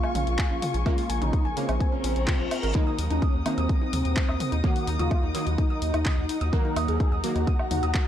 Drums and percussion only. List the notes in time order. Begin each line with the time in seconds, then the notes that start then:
0.03 low woodblock
0.15 open hi-hat, mid tom
0.27 closed hi-hat
0.39 kick, clap, closed hi-hat
0.62 open hi-hat, mid tom
0.74 closed hi-hat
0.86 kick, closed hi-hat, low woodblock
0.98 open hi-hat
1.10 open hi-hat
1.22 closed hi-hat, mid tom
1.33 kick, closed hi-hat
1.57 open hi-hat
1.69 closed hi-hat, low woodblock
1.80 kick, closed hi-hat
2.04 open hi-hat
2.16 closed hi-hat
2.28 kick, clap, closed hi-hat, mid tom
2.51 open hi-hat, low woodblock
2.63 closed hi-hat
2.75 kick, closed hi-hat
2.99 open hi-hat
3.10 closed hi-hat
3.22 kick, closed hi-hat
3.46 open hi-hat, low woodblock
3.58 closed hi-hat
3.69 kick, closed hi-hat
3.93 open hi-hat, mid tom
4.05 closed hi-hat
4.17 kick, clap, closed hi-hat
4.29 low woodblock
4.40 open hi-hat, mid tom
4.52 closed hi-hat
4.64 kick, closed hi-hat
4.76 open hi-hat
4.87 open hi-hat
4.99 closed hi-hat, mid tom
5.11 kick, closed hi-hat, low woodblock
5.35 open hi-hat
5.47 closed hi-hat
5.58 kick, closed hi-hat
5.82 open hi-hat
5.94 closed hi-hat, low woodblock
6.06 kick, clap, closed hi-hat, mid tom
6.29 open hi-hat
6.41 closed hi-hat
6.53 kick, closed hi-hat
6.76 open hi-hat, low woodblock
6.88 closed hi-hat
7.00 kick, closed hi-hat
7.24 open hi-hat
7.36 closed hi-hat
7.47 kick, closed hi-hat
7.59 low woodblock
7.71 open hi-hat, mid tom
7.83 closed hi-hat
7.95 kick, clap, closed hi-hat